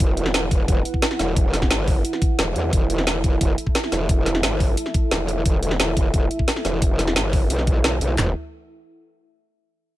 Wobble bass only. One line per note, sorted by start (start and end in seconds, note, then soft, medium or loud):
0.00 0.84 E1 medium
1.19 1.69 E1 loud
1.71 2.03 G1 loud
2.39 2.54 E1 medium
2.56 2.71 E2 loud
2.73 3.57 E1 loud
3.92 4.42 E1 loud
4.43 4.76 G1 loud
5.11 5.44 E1 loud
5.46 6.29 E1 loud
6.65 7.15 E1 loud
7.16 7.49 G1 loud
7.50 8.00 B1 loud
8.01 8.17 B1 loud
8.18 8.34 E1 loud